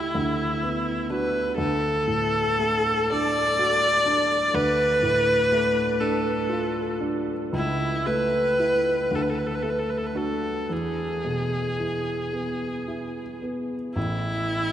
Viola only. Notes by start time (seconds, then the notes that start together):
Already playing: E4
1.10 B4
1.57 A4
3.10 D5
4.54 B4
6.00 A4
7.55 E4
8.06 B4
9.15 A4
9.22 B4
9.30 A4
9.38 B4
9.46 A4
9.55 B4
9.63 A4
9.70 B4
9.79 A4
9.90 B4
9.98 A4
10.07 B4
10.17 A4
10.72 G#4
13.95 E4